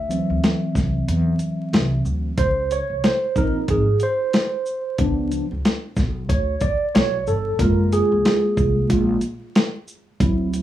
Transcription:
0.00 0.17 D2 medium
0.00 2.01 E5 medium
0.09 2.33 E3 soft
0.09 2.34 F#3 soft
0.09 2.34 C4 medium
0.09 closed hi-hat soft
0.09 shaker soft
0.30 0.39 D2 medium
0.44 snare medium
0.44 closed hi-hat medium
0.75 1.00 C2 medium
0.75 kick medium
0.75 snare soft
0.75 shaker soft
1.08 1.33 E2 loud
1.08 closed hi-hat medium
1.39 closed hi-hat soft
1.39 shaker soft
1.73 1.98 C2 loud
1.73 snare loud
1.73 closed hi-hat medium
2.05 2.30 D2 medium
2.05 shaker soft
2.38 2.78 C#2 medium
2.38 2.72 C5 loud
2.38 kick loud
2.38 closed hi-hat medium
2.71 3.05 C#5 loud
2.71 closed hi-hat soft
2.71 shaker soft
2.90 3.00 C2 medium
3.04 3.37 C5 medium
3.04 snare medium
3.04 closed hi-hat medium
3.36 3.61 A#1 medium
3.36 3.81 F3 medium
3.36 3.82 C4 medium
3.36 3.82 D#4 medium
3.36 3.70 A#4 medium
3.36 kick medium
3.36 shaker soft
3.68 3.93 G#1 medium
3.68 4.03 G#4 medium
3.68 kick medium
3.68 closed hi-hat medium
4.00 4.96 C5 medium
4.00 closed hi-hat soft
4.00 shaker soft
4.33 snare loud
4.33 closed hi-hat medium
4.66 shaker soft
4.98 5.38 C#2 loud
4.98 5.44 F3 medium
4.98 5.45 B3 soft
4.98 5.45 D4 medium
4.98 kick loud
4.98 closed hi-hat medium
5.32 closed hi-hat medium
5.32 shaker soft
5.51 5.61 C#2 medium
5.65 snare medium
5.65 closed hi-hat medium
5.97 6.29 B1 medium
5.97 kick medium
5.97 snare soft
5.97 shaker medium
6.29 6.54 D2 loud
6.29 6.63 C#5 medium
6.29 kick medium
6.29 closed hi-hat medium
6.61 6.95 D5 medium
6.61 kick medium
6.61 closed hi-hat soft
6.61 shaker soft
6.95 7.19 B1 medium
6.95 7.28 C#5 loud
6.95 snare loud
6.95 closed hi-hat medium
7.27 7.52 G1 medium
7.27 7.58 A4 medium
7.27 shaker soft
7.59 7.99 F#1 loud
7.59 8.88 G#3 medium
7.59 8.88 A#3 soft
7.59 8.89 F4 medium
7.59 7.93 A#4 medium
7.59 kick loud
7.59 closed hi-hat medium
7.93 8.86 G#4 medium
7.93 closed hi-hat medium
7.93 shaker medium
8.12 8.22 C#2 medium
8.25 snare loud
8.25 closed hi-hat medium
8.57 8.82 C2 medium
8.57 kick medium
8.57 shaker soft
8.89 9.15 A#1 loud
8.89 9.19 G#3 soft
8.89 9.19 A#3 soft
8.89 9.19 F4 medium
8.89 kick medium
8.89 closed hi-hat medium
9.21 closed hi-hat medium
9.21 shaker medium
9.56 snare loud
9.56 closed hi-hat medium
9.88 shaker soft
10.20 10.60 D2 medium
10.20 10.62 F#3 medium
10.20 10.62 C4 soft
10.20 10.62 E4 medium
10.20 kick loud
10.20 closed hi-hat medium
10.53 closed hi-hat soft
10.53 shaker soft

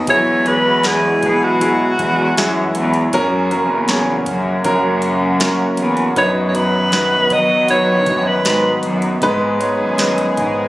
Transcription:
0.07 1.19 E2 loud
0.07 3.11 E3 medium
0.07 0.44 F#3 medium
0.07 3.11 G#3 medium
0.07 0.44 E4 medium
0.07 9.18 F#4 medium
0.07 0.44 G#4 medium
0.07 0.49 C#5 loud
0.07 kick loud
0.07 closed hi-hat medium
0.46 0.83 F#3 medium
0.46 0.83 E4 medium
0.46 0.83 G#4 medium
0.46 0.88 B4 medium
0.46 closed hi-hat medium
0.83 1.57 F#3 medium
0.83 1.57 E4 medium
0.83 1.57 F#4 medium
0.83 1.46 G#4 medium
0.83 snare loud
0.83 closed hi-hat medium
1.23 1.95 B2 medium
1.23 kick medium
1.23 closed hi-hat medium
1.44 2.77 F#4 medium
1.60 2.33 F#3 medium
1.60 2.33 E4 medium
1.60 2.34 G#4 medium
1.60 closed hi-hat medium
1.99 2.34 E2 medium
1.99 kick loud
1.99 closed hi-hat medium
2.37 2.73 F#2 medium
2.37 3.10 F#3 medium
2.37 3.10 E4 medium
2.37 3.10 G#4 medium
2.37 snare loud
2.37 closed hi-hat medium
2.75 3.11 E2 medium
2.75 closed hi-hat medium
2.94 closed hi-hat soft
3.12 3.70 F#2 loud
3.12 6.13 C#3 medium
3.12 3.50 F#3 loud
3.12 6.14 A#3 medium
3.12 3.50 C#4 loud
3.12 3.50 A#4 loud
3.12 kick loud
3.12 closed hi-hat medium
3.51 3.87 F#3 medium
3.51 3.88 C#4 medium
3.51 3.88 A#4 medium
3.51 closed hi-hat medium
3.70 4.23 E2 medium
3.88 4.61 F#3 medium
3.88 4.62 C#4 medium
3.88 4.62 G#4 medium
3.88 snare loud
3.88 closed hi-hat medium
4.26 4.63 F#2 medium
4.26 kick medium
4.26 closed hi-hat medium
4.64 5.74 F#2 loud
4.64 5.37 F#3 medium
4.64 5.37 C#4 medium
4.64 5.37 A#4 loud
4.64 kick medium
4.64 closed hi-hat medium
5.02 closed hi-hat medium
5.40 6.13 F#3 medium
5.40 6.13 C#4 medium
5.40 6.13 A#4 medium
5.40 snare loud
5.40 closed hi-hat medium
5.77 6.14 E2 medium
5.77 closed hi-hat medium
5.97 closed hi-hat soft
6.16 7.26 F#2 loud
6.16 10.68 D#3 medium
6.16 6.53 F#3 loud
6.16 10.68 B3 medium
6.16 6.53 D#4 medium
6.16 6.53 B4 loud
6.16 6.32 C#5 medium
6.16 kick loud
6.16 closed hi-hat medium
6.48 6.57 C#5 medium
6.55 6.90 F#3 medium
6.55 6.91 D#4 medium
6.55 7.34 B4 loud
6.55 6.91 B4 medium
6.55 closed hi-hat medium
6.92 7.65 F#3 medium
6.92 7.65 D#4 medium
6.92 7.65 B4 medium
6.92 snare loud
6.92 closed hi-hat medium
7.30 8.07 F#3 medium
7.30 7.70 D#5 loud
7.30 kick medium
7.30 closed hi-hat medium
7.68 8.42 F#3 medium
7.68 8.42 D#4 medium
7.68 8.42 B4 medium
7.68 8.29 C#5 medium
7.68 closed hi-hat medium
8.06 8.42 F#2 medium
8.06 kick loud
8.06 closed hi-hat medium
8.27 8.84 B4 medium
8.44 8.80 G#2 medium
8.44 9.18 F#3 medium
8.44 9.18 D#4 medium
8.44 9.18 B4 medium
8.44 snare loud
8.44 closed hi-hat medium
8.83 9.19 F#2 medium
8.83 closed hi-hat medium
9.02 closed hi-hat soft
9.21 9.75 G#2 medium
9.21 10.34 G#2 medium
9.21 9.58 G#3 loud
9.21 9.59 D#4 loud
9.21 10.68 G#4 medium
9.21 9.59 B4 loud
9.21 kick loud
9.21 closed hi-hat medium
9.60 9.97 G#3 medium
9.60 9.97 D#4 medium
9.60 9.97 C#5 medium
9.60 closed hi-hat medium
9.78 10.33 F#2 medium
9.98 10.68 G#3 medium
9.98 10.68 D#4 medium
9.98 10.68 B4 medium
9.98 snare loud
9.98 closed hi-hat medium
10.18 closed hi-hat soft
10.37 10.68 G#2 medium
10.37 kick medium
10.37 closed hi-hat medium

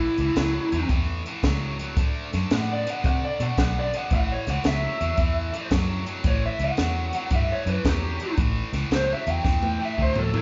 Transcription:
0.00 0.15 A2 medium
0.00 0.15 E3 medium
0.00 0.89 E4 loud
0.18 0.29 C#2 medium
0.18 0.35 A2 medium
0.18 0.35 E3 medium
0.18 closed hi-hat medium
0.36 0.58 C#2 medium
0.36 0.68 A2 medium
0.36 0.69 F#3 medium
0.36 snare loud
0.36 closed hi-hat medium
0.72 0.83 E2 medium
0.72 0.88 A2 medium
0.72 0.89 F#3 medium
0.72 closed hi-hat medium
0.89 1.21 E2 medium
0.89 1.22 A2 medium
0.89 1.22 E3 medium
0.89 kick loud
0.89 closed hi-hat medium
1.26 1.42 A2 medium
1.26 1.42 E3 medium
1.26 closed hi-hat medium
1.43 1.96 C#2 medium
1.43 1.76 A2 medium
1.43 1.76 F#3 medium
1.43 kick medium
1.43 snare loud
1.43 closed hi-hat medium
1.79 1.95 A2 medium
1.79 1.95 F#3 medium
1.79 closed hi-hat medium
1.96 2.18 D2 medium
1.96 2.29 D3 medium
1.96 2.30 A3 medium
1.96 kick loud
1.96 closed hi-hat medium
2.33 2.44 F#2 medium
2.33 2.49 D3 medium
2.33 2.49 A3 medium
2.33 snare soft
2.33 closed hi-hat medium
2.51 2.83 A2 medium
2.51 2.83 D3 medium
2.51 2.83 B3 medium
2.51 2.69 F#5 loud
2.51 snare loud
2.51 closed hi-hat medium
2.73 2.88 D5 medium
2.86 3.02 D3 medium
2.86 3.02 B3 medium
2.86 3.05 F#5 medium
2.86 closed hi-hat medium
3.04 3.25 C3 medium
3.04 3.36 D3 medium
3.04 3.36 A3 medium
3.04 3.23 F#5 loud
3.04 kick loud
3.04 closed hi-hat medium
3.25 3.41 D5 medium
3.40 3.50 B2 medium
3.40 3.56 D3 medium
3.40 3.56 A3 medium
3.40 3.58 F#5 medium
3.40 closed hi-hat medium
3.58 3.90 B1 medium
3.58 3.90 D3 medium
3.58 3.90 B3 medium
3.58 3.76 F#5 medium
3.58 kick medium
3.58 snare loud
3.58 closed hi-hat medium
3.79 3.95 D5 medium
3.93 4.09 D3 medium
3.93 4.10 B3 medium
3.93 4.12 F#5 medium
3.93 closed hi-hat medium
4.11 4.32 A1 medium
4.11 4.44 A2 medium
4.11 4.44 E3 medium
4.11 kick loud
4.11 closed hi-hat medium
4.15 4.30 F#5 loud
4.32 4.48 C#5 medium
4.47 4.58 C#2 medium
4.47 4.63 A2 medium
4.47 4.63 E3 medium
4.47 4.67 F#5 medium
4.47 snare soft
4.47 closed hi-hat medium
4.64 4.86 C#2 medium
4.64 4.96 A2 medium
4.64 4.96 F#3 medium
4.64 5.69 E5 medium
4.64 snare loud
4.64 closed hi-hat medium
5.00 5.11 E2 medium
5.00 5.16 A2 medium
5.00 5.16 F#3 medium
5.00 closed hi-hat medium
5.17 5.50 E2 medium
5.17 5.50 A2 medium
5.17 5.50 E3 medium
5.17 kick loud
5.17 closed hi-hat medium
5.53 5.69 A2 medium
5.53 5.69 E3 medium
5.53 closed hi-hat medium
5.71 6.03 F#2 medium
5.71 6.03 A2 medium
5.71 6.04 F#3 medium
5.71 kick medium
5.71 snare loud
5.71 closed hi-hat medium
6.06 6.23 A2 medium
6.06 6.23 F#3 medium
6.06 closed hi-hat medium
6.24 6.46 A1 medium
6.24 6.57 A2 medium
6.24 6.57 E3 medium
6.24 6.43 C#5 loud
6.24 kick loud
6.24 closed hi-hat medium
6.46 6.61 E5 medium
6.59 6.70 C#2 medium
6.59 6.76 A2 medium
6.59 6.76 E3 medium
6.59 closed hi-hat medium
6.65 7.32 F#5 loud
6.77 7.11 E2 medium
6.77 7.10 A2 medium
6.77 7.11 F#3 medium
6.77 snare loud
6.77 closed hi-hat medium
7.13 7.29 A2 medium
7.13 7.30 F#3 medium
7.13 closed hi-hat medium
7.30 7.53 G2 medium
7.30 7.63 A2 medium
7.30 7.63 E3 medium
7.30 kick loud
7.30 closed hi-hat medium
7.35 7.51 E5 medium
7.52 7.69 C#5 medium
7.66 7.77 F#2 medium
7.66 7.83 A2 medium
7.66 7.83 E3 medium
7.66 7.85 B4 loud
7.66 closed hi-hat medium
7.85 8.17 E2 medium
7.85 8.17 A2 medium
7.85 8.17 F#3 medium
7.85 8.38 G4 medium
7.85 kick medium
7.85 snare loud
7.85 closed hi-hat medium
8.20 8.37 A2 medium
8.20 8.37 F#3 medium
8.20 closed hi-hat medium
8.38 8.60 A1 medium
8.38 8.70 A2 medium
8.38 8.70 E3 medium
8.38 kick loud
8.38 closed hi-hat medium
8.73 8.84 C#2 medium
8.73 8.90 A2 medium
8.73 8.90 E3 medium
8.73 snare soft
8.73 closed hi-hat medium
8.91 9.13 C#2 medium
8.91 9.23 A2 medium
8.91 9.24 F#3 loud
8.91 snare loud
8.91 closed hi-hat medium
8.95 9.11 C5 loud
9.13 9.31 E5 medium
9.27 9.38 E2 medium
9.27 9.42 A2 medium
9.27 9.43 F#3 medium
9.27 closed hi-hat medium
9.31 9.81 G5 medium
9.43 9.77 E2 medium
9.43 9.76 A2 medium
9.43 9.77 E3 medium
9.43 kick loud
9.43 snare medium
9.63 high tom medium
9.79 9.96 A2 medium
9.79 9.96 E3 medium
9.85 10.00 E5 medium
9.97 10.30 D2 medium
9.97 10.30 A2 medium
9.97 10.30 F#3 medium
9.97 kick medium
10.02 10.17 C5 medium
10.16 10.35 A4 medium
10.16 floor tom medium
10.33 10.42 A2 medium
10.33 10.42 F#3 medium
10.33 10.42 E4 medium
10.33 floor tom medium

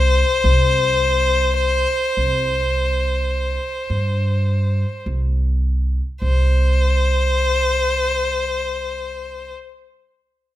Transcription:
0.00 0.22 C2 medium
0.00 5.02 C5 medium
0.44 1.84 C2 medium
2.17 3.57 C2 medium
3.90 4.83 G2 medium
5.06 5.99 C2 medium
6.22 9.52 C2 medium
6.22 9.52 C5 medium

